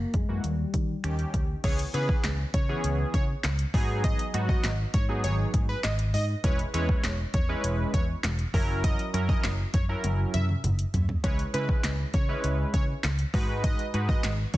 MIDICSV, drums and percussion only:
0, 0, Header, 1, 2, 480
1, 0, Start_track
1, 0, Tempo, 600000
1, 1311, Time_signature, 4, 2, 24, 8
1, 11656, End_track
2, 0, Start_track
2, 0, Title_t, "Drums"
2, 110, Note_on_c, 9, 42, 65
2, 111, Note_on_c, 9, 36, 95
2, 190, Note_off_c, 9, 42, 0
2, 191, Note_off_c, 9, 36, 0
2, 351, Note_on_c, 9, 42, 104
2, 431, Note_off_c, 9, 42, 0
2, 590, Note_on_c, 9, 36, 90
2, 590, Note_on_c, 9, 42, 80
2, 670, Note_off_c, 9, 36, 0
2, 670, Note_off_c, 9, 42, 0
2, 831, Note_on_c, 9, 26, 104
2, 832, Note_on_c, 9, 42, 84
2, 911, Note_off_c, 9, 26, 0
2, 912, Note_off_c, 9, 42, 0
2, 951, Note_on_c, 9, 42, 52
2, 1031, Note_off_c, 9, 42, 0
2, 1071, Note_on_c, 9, 36, 95
2, 1071, Note_on_c, 9, 42, 72
2, 1151, Note_off_c, 9, 36, 0
2, 1151, Note_off_c, 9, 42, 0
2, 1311, Note_on_c, 9, 42, 99
2, 1311, Note_on_c, 9, 49, 111
2, 1312, Note_on_c, 9, 36, 127
2, 1391, Note_off_c, 9, 42, 0
2, 1391, Note_off_c, 9, 49, 0
2, 1392, Note_off_c, 9, 36, 0
2, 1433, Note_on_c, 9, 42, 74
2, 1513, Note_off_c, 9, 42, 0
2, 1553, Note_on_c, 9, 42, 82
2, 1633, Note_off_c, 9, 42, 0
2, 1672, Note_on_c, 9, 36, 108
2, 1752, Note_off_c, 9, 36, 0
2, 1789, Note_on_c, 9, 38, 95
2, 1791, Note_on_c, 9, 42, 90
2, 1793, Note_on_c, 9, 39, 121
2, 1869, Note_off_c, 9, 38, 0
2, 1871, Note_off_c, 9, 42, 0
2, 1873, Note_off_c, 9, 39, 0
2, 2031, Note_on_c, 9, 42, 67
2, 2032, Note_on_c, 9, 36, 102
2, 2111, Note_off_c, 9, 42, 0
2, 2112, Note_off_c, 9, 36, 0
2, 2272, Note_on_c, 9, 42, 111
2, 2352, Note_off_c, 9, 42, 0
2, 2511, Note_on_c, 9, 36, 92
2, 2512, Note_on_c, 9, 42, 86
2, 2591, Note_off_c, 9, 36, 0
2, 2592, Note_off_c, 9, 42, 0
2, 2748, Note_on_c, 9, 38, 89
2, 2752, Note_on_c, 9, 39, 115
2, 2753, Note_on_c, 9, 42, 91
2, 2828, Note_off_c, 9, 38, 0
2, 2832, Note_off_c, 9, 39, 0
2, 2833, Note_off_c, 9, 42, 0
2, 2871, Note_on_c, 9, 42, 55
2, 2951, Note_off_c, 9, 42, 0
2, 2992, Note_on_c, 9, 36, 100
2, 2992, Note_on_c, 9, 46, 79
2, 3072, Note_off_c, 9, 36, 0
2, 3072, Note_off_c, 9, 46, 0
2, 3232, Note_on_c, 9, 36, 127
2, 3232, Note_on_c, 9, 42, 99
2, 3312, Note_off_c, 9, 36, 0
2, 3312, Note_off_c, 9, 42, 0
2, 3354, Note_on_c, 9, 42, 68
2, 3434, Note_off_c, 9, 42, 0
2, 3473, Note_on_c, 9, 42, 82
2, 3553, Note_off_c, 9, 42, 0
2, 3592, Note_on_c, 9, 36, 114
2, 3672, Note_off_c, 9, 36, 0
2, 3709, Note_on_c, 9, 38, 92
2, 3711, Note_on_c, 9, 42, 86
2, 3713, Note_on_c, 9, 39, 118
2, 3789, Note_off_c, 9, 38, 0
2, 3791, Note_off_c, 9, 42, 0
2, 3793, Note_off_c, 9, 39, 0
2, 3951, Note_on_c, 9, 42, 70
2, 3952, Note_on_c, 9, 36, 103
2, 4031, Note_off_c, 9, 42, 0
2, 4032, Note_off_c, 9, 36, 0
2, 4191, Note_on_c, 9, 42, 108
2, 4271, Note_off_c, 9, 42, 0
2, 4431, Note_on_c, 9, 36, 94
2, 4431, Note_on_c, 9, 42, 85
2, 4511, Note_off_c, 9, 36, 0
2, 4511, Note_off_c, 9, 42, 0
2, 4668, Note_on_c, 9, 38, 85
2, 4671, Note_on_c, 9, 39, 106
2, 4672, Note_on_c, 9, 42, 90
2, 4748, Note_off_c, 9, 38, 0
2, 4751, Note_off_c, 9, 39, 0
2, 4752, Note_off_c, 9, 42, 0
2, 4791, Note_on_c, 9, 42, 53
2, 4871, Note_off_c, 9, 42, 0
2, 4911, Note_on_c, 9, 46, 82
2, 4991, Note_off_c, 9, 46, 0
2, 5152, Note_on_c, 9, 36, 127
2, 5152, Note_on_c, 9, 42, 97
2, 5232, Note_off_c, 9, 36, 0
2, 5232, Note_off_c, 9, 42, 0
2, 5273, Note_on_c, 9, 42, 69
2, 5353, Note_off_c, 9, 42, 0
2, 5393, Note_on_c, 9, 42, 84
2, 5473, Note_off_c, 9, 42, 0
2, 5512, Note_on_c, 9, 36, 115
2, 5592, Note_off_c, 9, 36, 0
2, 5629, Note_on_c, 9, 38, 95
2, 5631, Note_on_c, 9, 42, 90
2, 5633, Note_on_c, 9, 39, 122
2, 5709, Note_off_c, 9, 38, 0
2, 5711, Note_off_c, 9, 42, 0
2, 5713, Note_off_c, 9, 39, 0
2, 5871, Note_on_c, 9, 42, 70
2, 5872, Note_on_c, 9, 36, 99
2, 5951, Note_off_c, 9, 42, 0
2, 5952, Note_off_c, 9, 36, 0
2, 6111, Note_on_c, 9, 42, 111
2, 6191, Note_off_c, 9, 42, 0
2, 6351, Note_on_c, 9, 36, 88
2, 6351, Note_on_c, 9, 42, 87
2, 6431, Note_off_c, 9, 36, 0
2, 6431, Note_off_c, 9, 42, 0
2, 6588, Note_on_c, 9, 38, 89
2, 6591, Note_on_c, 9, 39, 111
2, 6593, Note_on_c, 9, 42, 92
2, 6668, Note_off_c, 9, 38, 0
2, 6671, Note_off_c, 9, 39, 0
2, 6673, Note_off_c, 9, 42, 0
2, 6711, Note_on_c, 9, 42, 52
2, 6791, Note_off_c, 9, 42, 0
2, 6831, Note_on_c, 9, 36, 99
2, 6832, Note_on_c, 9, 46, 80
2, 6911, Note_off_c, 9, 36, 0
2, 6912, Note_off_c, 9, 46, 0
2, 7072, Note_on_c, 9, 36, 127
2, 7072, Note_on_c, 9, 42, 99
2, 7152, Note_off_c, 9, 36, 0
2, 7152, Note_off_c, 9, 42, 0
2, 7194, Note_on_c, 9, 42, 69
2, 7274, Note_off_c, 9, 42, 0
2, 7313, Note_on_c, 9, 42, 83
2, 7393, Note_off_c, 9, 42, 0
2, 7431, Note_on_c, 9, 36, 115
2, 7511, Note_off_c, 9, 36, 0
2, 7549, Note_on_c, 9, 38, 97
2, 7551, Note_on_c, 9, 42, 94
2, 7553, Note_on_c, 9, 39, 115
2, 7629, Note_off_c, 9, 38, 0
2, 7631, Note_off_c, 9, 42, 0
2, 7633, Note_off_c, 9, 39, 0
2, 7790, Note_on_c, 9, 42, 73
2, 7791, Note_on_c, 9, 36, 96
2, 7870, Note_off_c, 9, 42, 0
2, 7871, Note_off_c, 9, 36, 0
2, 8031, Note_on_c, 9, 42, 109
2, 8032, Note_on_c, 9, 48, 69
2, 8111, Note_off_c, 9, 42, 0
2, 8112, Note_off_c, 9, 48, 0
2, 8271, Note_on_c, 9, 42, 83
2, 8272, Note_on_c, 9, 47, 80
2, 8351, Note_off_c, 9, 42, 0
2, 8352, Note_off_c, 9, 47, 0
2, 8392, Note_on_c, 9, 47, 71
2, 8472, Note_off_c, 9, 47, 0
2, 8512, Note_on_c, 9, 45, 97
2, 8513, Note_on_c, 9, 42, 92
2, 8592, Note_off_c, 9, 45, 0
2, 8593, Note_off_c, 9, 42, 0
2, 8630, Note_on_c, 9, 42, 54
2, 8710, Note_off_c, 9, 42, 0
2, 8751, Note_on_c, 9, 42, 77
2, 8751, Note_on_c, 9, 43, 104
2, 8831, Note_off_c, 9, 42, 0
2, 8831, Note_off_c, 9, 43, 0
2, 8871, Note_on_c, 9, 43, 101
2, 8951, Note_off_c, 9, 43, 0
2, 8991, Note_on_c, 9, 42, 99
2, 8992, Note_on_c, 9, 36, 127
2, 9071, Note_off_c, 9, 42, 0
2, 9072, Note_off_c, 9, 36, 0
2, 9113, Note_on_c, 9, 42, 73
2, 9193, Note_off_c, 9, 42, 0
2, 9232, Note_on_c, 9, 42, 81
2, 9312, Note_off_c, 9, 42, 0
2, 9351, Note_on_c, 9, 36, 113
2, 9431, Note_off_c, 9, 36, 0
2, 9468, Note_on_c, 9, 38, 92
2, 9471, Note_on_c, 9, 42, 94
2, 9472, Note_on_c, 9, 39, 120
2, 9548, Note_off_c, 9, 38, 0
2, 9551, Note_off_c, 9, 42, 0
2, 9552, Note_off_c, 9, 39, 0
2, 9710, Note_on_c, 9, 42, 72
2, 9711, Note_on_c, 9, 36, 106
2, 9790, Note_off_c, 9, 42, 0
2, 9791, Note_off_c, 9, 36, 0
2, 9951, Note_on_c, 9, 42, 108
2, 10031, Note_off_c, 9, 42, 0
2, 10190, Note_on_c, 9, 36, 94
2, 10190, Note_on_c, 9, 42, 87
2, 10270, Note_off_c, 9, 36, 0
2, 10270, Note_off_c, 9, 42, 0
2, 10427, Note_on_c, 9, 38, 85
2, 10431, Note_on_c, 9, 39, 104
2, 10432, Note_on_c, 9, 42, 91
2, 10507, Note_off_c, 9, 38, 0
2, 10511, Note_off_c, 9, 39, 0
2, 10512, Note_off_c, 9, 42, 0
2, 10550, Note_on_c, 9, 42, 56
2, 10630, Note_off_c, 9, 42, 0
2, 10670, Note_on_c, 9, 46, 79
2, 10671, Note_on_c, 9, 36, 105
2, 10750, Note_off_c, 9, 46, 0
2, 10751, Note_off_c, 9, 36, 0
2, 10911, Note_on_c, 9, 36, 127
2, 10911, Note_on_c, 9, 42, 100
2, 10991, Note_off_c, 9, 36, 0
2, 10991, Note_off_c, 9, 42, 0
2, 11033, Note_on_c, 9, 42, 70
2, 11113, Note_off_c, 9, 42, 0
2, 11152, Note_on_c, 9, 42, 87
2, 11232, Note_off_c, 9, 42, 0
2, 11271, Note_on_c, 9, 36, 112
2, 11351, Note_off_c, 9, 36, 0
2, 11387, Note_on_c, 9, 38, 94
2, 11390, Note_on_c, 9, 42, 93
2, 11391, Note_on_c, 9, 39, 118
2, 11467, Note_off_c, 9, 38, 0
2, 11470, Note_off_c, 9, 42, 0
2, 11471, Note_off_c, 9, 39, 0
2, 11630, Note_on_c, 9, 42, 72
2, 11631, Note_on_c, 9, 36, 100
2, 11656, Note_off_c, 9, 36, 0
2, 11656, Note_off_c, 9, 42, 0
2, 11656, End_track
0, 0, End_of_file